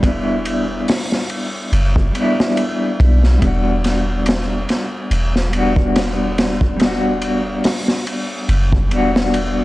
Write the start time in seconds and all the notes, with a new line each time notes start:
Already playing: E1
0.00 G3 B3, kick, ride
0.05 D4 E4
0.45 ride
0.88 snare, open hi-hat
1.12 snare
1.30 ride
1.72 F#1, ride
1.96 kick
2.12 G3 B3, ride
2.18 D4 E4
2.40 snare
2.57 ride
3.00 B1, kick, ride
3.23 snare
3.39 E1 G3 B3, kick, ride
3.44 D4 F#4
3.84 snare, ride
4.26 snare, ride
4.69 snare, ride
5.11 E1, ride
5.36 snare
5.50 G3 B3, ride
5.55 D4 F#4
5.76 kick
5.96 snare, ride
6.38 snare, ride
6.61 kick
6.77 G3 B3, ride
6.82 D4, snare
6.86 F#4
7.22 ride
7.64 snare, open hi-hat
7.88 snare
8.07 ride
8.49 F#1, ride
8.73 kick
8.88 E1 G3 B3, ride
8.93 D4 F#4
9.16 snare
9.34 ride